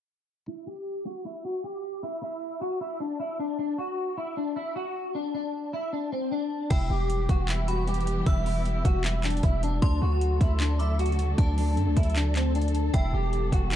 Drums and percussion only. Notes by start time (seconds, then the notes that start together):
6.71 kick, closed hi-hat, crash
7.10 closed hi-hat
7.29 kick, closed hi-hat
7.49 clap, closed hi-hat
7.68 closed hi-hat
7.88 closed hi-hat
7.94 closed hi-hat
8.01 closed hi-hat
8.07 closed hi-hat
8.26 kick, closed hi-hat
8.46 open hi-hat
8.65 closed hi-hat
8.85 kick, closed hi-hat
9.04 clap, closed hi-hat
9.24 clap, closed hi-hat
9.30 closed hi-hat
9.37 closed hi-hat
9.43 kick, closed hi-hat
9.63 closed hi-hat
9.82 kick, closed hi-hat
10.21 closed hi-hat
10.41 kick, closed hi-hat
10.60 clap, closed hi-hat
10.80 closed hi-hat
10.99 closed hi-hat
11.06 closed hi-hat
11.12 closed hi-hat
11.19 closed hi-hat
11.38 kick, closed hi-hat
11.58 open hi-hat
11.77 closed hi-hat
11.97 kick, closed hi-hat
12.03 closed hi-hat
12.10 closed hi-hat
12.16 clap, closed hi-hat
12.36 clap, closed hi-hat
12.55 closed hi-hat
12.62 closed hi-hat
12.68 closed hi-hat
12.75 closed hi-hat
12.94 kick, closed hi-hat
13.33 closed hi-hat
13.52 kick, closed hi-hat
13.72 clap, closed hi-hat